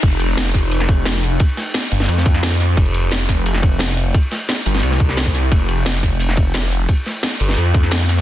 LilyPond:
<<
  \new Staff \with { instrumentName = "Detuned saw bass" } { \clef bass \time 4/4 \key c \phrygian \tempo 4 = 175 f,,1 | r4. g,,8 f,2 | f,,1 | r4. g,,8 c,2 |
f,,1 | r4. g,,8 f,2 | }
  \new DrumStaff \with { instrumentName = "Drums" } \drummode { \time 4/4 <cymc hh bd cymr>16 hh16 <hh cymr>8 <hh cymr sn>8 <hho bd cymr sn>8 <hh cymr>16 sn16 <hh bd cymr>8 <hh cymr sn>16 sn16 <hho cymr>8 | <hh bd cymr>16 hh16 <hh hho sn>8 <hh cymr sn>8 <hho cymr>16 sn16 <hh cymr>16 sn16 <hh bd cymr>16 sn16 <hh cymr sn>16 sn16 <hho cymr sn>8 | <hh bd cymr>16 hh16 <hh cymr>8 <hh cymr sn>8 <hho bd cymr sn>8 <hh cymr>16 sn16 <hh bd cymr>8 <hh cymr sn>16 sn16 <hho cymr>8 | <hh bd cymr>16 hh16 <hh hho sn>16 hh16 <hh cymr sn>8 <hho cymr>16 sn16 <hh cymr>16 sn16 <hh bd cymr>16 sn16 <hh cymr sn>16 <bd sn>16 <hho cymr sn>8 |
<hh bd cymr>16 hh16 <hh cymr>8 <hh cymr sn>8 <hho bd cymr sn>8 <hh cymr>16 sn16 <hh bd cymr>8 <hh cymr sn>16 sn16 <hho cymr>8 | <hh bd cymr>16 hh16 <hh hho sn>8 <hh cymr sn>8 <hho cymr>16 sn16 <hh cymr>8 <hh bd cymr>16 sn16 <hh cymr sn>16 sn16 <hho cymr sn>16 sn16 | }
>>